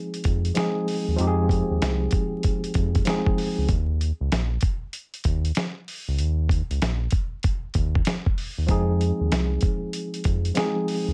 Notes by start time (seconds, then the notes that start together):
Already playing: F3 G#3 C4 D#4 G#4
0.14 closed hi-hat
0.24 F2, kick, closed hi-hat
0.45 closed hi-hat
0.54 F3 G#3 C4 D#4, snare, closed hi-hat
0.58 G#4
0.88 open hi-hat
1.08 D#2
1.16 F2 F3 G#3 C4 D#4, closed hi-hat
1.21 G4
1.27 G#4
1.49 kick, closed hi-hat
1.70 D#2
1.82 C2, snare, closed hi-hat
2.11 kick, closed hi-hat
2.43 kick, closed hi-hat
2.64 closed hi-hat
2.74 F2, kick, closed hi-hat
2.95 kick, closed hi-hat
3.05 F3 G#3 C4 D#4, snare, closed hi-hat
3.09 G#4
3.26 kick
3.38 open hi-hat
3.58 C#2
3.69 D#2, kick, closed hi-hat
4.01 closed hi-hat
4.20 C#2
4.32 A#1, snare, closed hi-hat
4.61 kick, closed hi-hat
4.93 closed hi-hat
5.14 closed hi-hat
5.24 D#2, kick, closed hi-hat
5.45 closed hi-hat
5.55 snare, closed hi-hat
5.88 open hi-hat
6.08 C#2
6.18 D#2, closed hi-hat
6.49 kick, closed hi-hat
6.70 C#2, closed hi-hat
6.82 A#1, snare, closed hi-hat
7.11 kick, closed hi-hat
7.43 kick, closed hi-hat
7.74 D#2, kick, closed hi-hat
7.95 kick
8.05 snare, closed hi-hat
8.26 kick
8.38 open hi-hat
8.58 D#2
8.67 F2 F3 G#3 C4 D#4, kick, closed hi-hat
8.71 G#4
9.01 closed hi-hat
9.21 D#2
9.32 C2, snare, closed hi-hat
9.61 kick, closed hi-hat
9.93 closed hi-hat
10.14 closed hi-hat
10.24 F2, kick, closed hi-hat
10.45 closed hi-hat
10.54 F3 G#3 C4 D#4, snare, closed hi-hat
10.59 G#4
10.88 open hi-hat
11.08 D#2